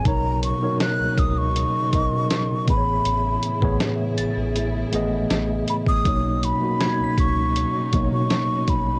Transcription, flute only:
X:1
M:4/4
L:1/16
Q:1/4=80
K:B
V:1 name="Flute"
a2 c'2 f'2 d' c'6- c' b2- | b4 z8 z2 b d'- | d'2 b4 c'4- c' c'3 b2 |]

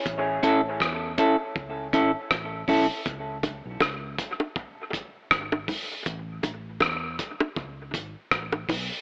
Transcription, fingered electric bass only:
X:1
M:4/4
L:1/16
Q:"Swing 16ths" 1/4=80
K:Alyd
V:1 name="Fingered electric bass" clef=bass
A,,,2 A,,,2 E,,2 z2 C,,2 G,,, z A,,,2 B,,, z | C,,3 B,,, C,,2 z6 G,,,2 z2 | A,,,2 A,,,2 E,,2 z2 C,,2 G,,, z A,,,2 B,,, z |]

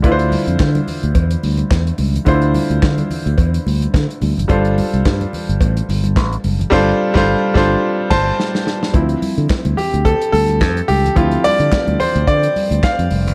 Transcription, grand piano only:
X:1
M:4/4
L:1/16
Q:"Swing 16ths" 1/4=108
K:Ddor
V:1 name="Grand piano"
[D,DEFBc]16 | [D,DEFc]16 | [G,DFAc]16 | [G,DFAc]2 z [G,DFAc]2 z [G,DFAc]2 z2 [ca]2 z4 |
[F,CE]6 G2 A2 A4 G2 | [F,CEF]2 d4 c2 d4 f2 z2 |]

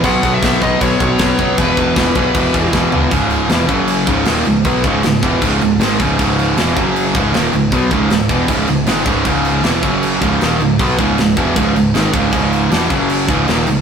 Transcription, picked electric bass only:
X:1
M:4/4
L:1/8
Q:1/4=156
K:C#m
V:1 name="Picked electric bass" clef=bass
B,,, B,,, B,,, B,,, B,,, B,,, B,,, F,,, | E,,, E,,, E,,, B,,, E,,, E,,, E,,, C,, | C,,,2 E,,, F,,,2 C,,, D,,, C,,, | B,,, C,,, C,,, E,,, C,,, C,,, G,,, C,,, |
C,,,2 E,,, F,,,2 C,,, D,,, C,,, | B,,, C,,, C,,, E,,, C,,, C,,, G,,, C,,, | C,,,2 E,,, F,,,2 C,,, D,,, C,,, | B,,, C,,, C,,, E,,, C,,, C,,, G,,, C,,, |
C,,,2 E,,, F,,,2 C,,, D,,, C,,, |]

